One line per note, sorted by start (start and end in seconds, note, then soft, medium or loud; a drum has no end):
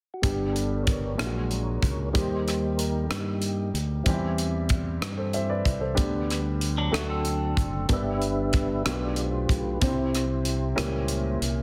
0.14 0.22 F#4 soft
0.22 1.15 G1 medium
0.22 1.15 G2 soft
0.22 1.14 G3 soft
0.22 1.19 G3 soft
0.22 1.14 B3 medium
0.22 1.19 B3 soft
0.22 0.83 D4 soft
0.22 1.17 D4 soft
0.22 0.56 G4 medium
0.22 1.19 G4 medium
0.22 kick medium
0.22 closed hi-hat medium
0.53 0.87 A4 medium
0.53 closed hi-hat soft
0.83 1.14 D4 medium
0.83 2.10 A#4 medium
0.83 2.09 C#5 soft
0.83 kick medium
0.83 closed hi-hat medium
0.88 cross-stick soft
1.14 1.59 F#3 soft
1.14 1.59 G#3 soft
1.14 2.14 G#3 medium
1.14 1.60 D4 soft
1.18 1.79 A#1 medium
1.18 2.10 A#2 soft
1.18 2.12 A#3 soft
1.18 2.14 D4 soft
1.18 1.25 E4 soft
1.18 cross-stick medium
1.18 closed hi-hat medium
1.25 2.18 F#4 medium
1.51 closed hi-hat soft
1.83 2.12 C#2 medium
1.83 kick medium
1.83 closed hi-hat soft
2.12 3.07 D#2 medium
2.12 3.06 D#3 soft
2.12 3.05 G3 soft
2.12 4.02 G3 medium
2.12 4.02 A#3 soft
2.12 3.06 A#3 soft
2.12 3.06 D#4 medium
2.12 4.02 D#4 soft
2.12 3.06 G4 medium
2.12 4.03 G4 medium
2.12 2.80 C5 medium
2.12 kick medium
2.12 closed hi-hat medium
2.48 cross-stick soft
2.48 closed hi-hat soft
2.77 3.03 A#4 medium
2.77 closed hi-hat medium
3.03 3.10 A4 soft
3.10 3.70 G2 medium
3.10 3.39 A#3 soft
3.10 3.39 D#4 soft
3.10 3.78 G4 medium
3.10 cross-stick medium
3.10 closed hi-hat medium
3.40 3.70 G3 soft
3.40 3.70 A#3 soft
3.40 3.70 D#4 soft
3.40 closed hi-hat soft
3.74 4.04 D2 medium
3.74 closed hi-hat soft
4.03 4.98 E2 medium
4.03 4.98 E3 medium
4.03 4.47 G3 soft
4.03 5.93 G3 medium
4.03 4.47 C4 soft
4.03 5.94 C4 medium
4.03 4.47 E4 medium
4.03 kick medium
4.03 closed hi-hat medium
4.08 4.14 D#4 soft
4.08 5.94 G4 medium
4.14 5.98 E4 medium
4.38 closed hi-hat soft
4.69 kick medium
4.69 closed hi-hat medium
5.01 5.62 G2 medium
5.01 cross-stick medium
5.01 closed hi-hat medium
5.17 5.33 A4 soft
5.17 5.33 C5 soft
5.33 5.63 G3 soft
5.33 5.63 C4 soft
5.33 5.64 E4 soft
5.33 5.50 C5 soft
5.33 5.49 E5 medium
5.33 closed hi-hat soft
5.50 5.80 B4 soft
5.50 5.80 D5 medium
5.65 5.95 C2 medium
5.65 kick medium
5.65 closed hi-hat soft
5.81 6.12 A4 soft
5.81 6.12 C5 soft
5.95 6.90 D2 medium
5.95 6.88 D3 medium
5.95 6.92 G3 medium
5.95 6.41 G3 soft
5.95 6.92 B3 medium
5.95 6.91 D4 medium
5.95 6.93 G4 medium
5.95 kick medium
5.95 closed hi-hat medium
6.00 6.42 B3 soft
6.00 6.42 D4 medium
6.30 cross-stick soft
6.30 closed hi-hat soft
6.61 closed hi-hat medium
6.78 6.93 F#3 medium
6.78 6.93 D4 medium
6.92 7.53 D2 medium
6.92 7.85 D3 medium
6.92 7.85 F#3 soft
6.92 7.89 A3 medium
6.92 7.09 A3 soft
6.92 7.86 A3 soft
6.92 7.87 D4 medium
6.92 7.86 D4 soft
6.92 6.99 E4 soft
6.92 7.09 F#4 medium
6.92 7.89 A4 medium
6.92 cross-stick medium
6.92 closed hi-hat medium
6.99 7.92 F#4 soft
7.09 7.86 C4 medium
7.09 7.86 A4 soft
7.25 closed hi-hat soft
7.57 7.87 F#1 medium
7.57 kick medium
7.57 closed hi-hat soft
7.88 8.82 G1 medium
7.88 8.82 G2 soft
7.88 8.83 G3 soft
7.88 8.85 B3 soft
7.88 8.83 B3 soft
7.88 8.84 D4 soft
7.88 8.84 G4 soft
7.88 8.83 G4 medium
7.88 7.96 A#4 soft
7.88 kick medium
7.88 closed hi-hat medium
7.93 8.83 D4 soft
7.93 8.83 B4 medium
7.93 8.89 B4 medium
7.93 8.90 E5 medium
8.22 closed hi-hat soft
8.53 kick medium
8.53 cross-stick soft
8.53 closed hi-hat medium
8.85 9.46 B1 medium
8.85 9.78 B2 soft
8.85 9.79 B2 soft
8.85 9.79 A3 soft
8.85 9.80 D4 soft
8.85 9.81 F4 soft
8.85 9.79 F4 soft
8.85 9.81 G4 soft
8.85 8.92 A#4 soft
8.85 cross-stick medium
8.85 closed hi-hat medium
8.89 9.79 G4 medium
8.89 9.85 B4 medium
8.89 9.21 D5 medium
9.16 closed hi-hat soft
9.25 9.54 C5 medium
9.49 9.79 B1 medium
9.49 kick medium
9.49 closed hi-hat soft
9.56 9.83 B4 medium
9.81 10.74 C2 medium
9.81 10.74 C3 medium
9.81 10.25 G3 soft
9.81 10.77 C4 medium
9.81 10.26 C4 soft
9.81 9.88 D4 soft
9.81 10.75 G4 soft
9.81 10.78 C5 medium
9.81 11.39 C5 soft
9.81 kick medium
9.81 closed hi-hat medium
9.85 10.78 E4 soft
9.85 10.74 E4 soft
9.85 11.41 G4 medium
10.15 cross-stick soft
10.15 closed hi-hat soft
10.45 closed hi-hat medium
10.76 11.38 C#2 medium
10.76 11.62 A#2 medium
10.76 11.62 G3 soft
10.76 11.62 A#3 soft
10.76 11.62 C#4 medium
10.76 11.62 E4 medium
10.76 11.62 E4 soft
10.76 11.62 G4 medium
10.76 11.62 A#4 medium
10.76 cross-stick medium
10.76 closed hi-hat medium
11.08 closed hi-hat soft
11.42 11.62 C2 medium
11.42 closed hi-hat soft